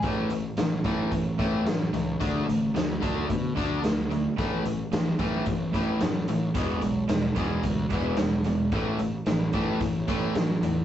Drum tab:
HH |xxxxxxxx|xxxxxxxx|xxxxxxxx|xxxxxxxx|
SD |--o---o-|--o---o-|--o---o-|--o---o-|
BD |o--ooo--|o--ooo--|o--ooo--|o--ooo--|

HH |xxxxxxxx|
SD |--o---o-|
BD |o--ooo--|